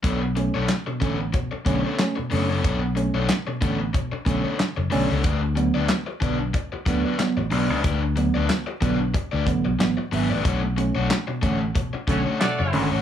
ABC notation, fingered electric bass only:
X:1
M:4/4
L:1/16
Q:"Swing 16ths" 1/4=92
K:Bm
V:1 name="Fingered electric bass" clef=bass
B,,,3 B,,, z2 A,,,2 z2 B,,, z3 F,,,2 | B,,,3 B,,, z2 A,,,2 z2 B,,, z2 F,,, B,,, C,, | D,,3 D,, z2 B,,,2 z2 D,, z2 A,,, B,,, C,, | D,,3 D,, z2 B,,,2 z D,, A,,, B,,, A,,, z ^G,,, A,,, |
B,,,3 B,,, z2 A,,,2 z2 B,,, z2 F,,, ^G,,, A,,, |]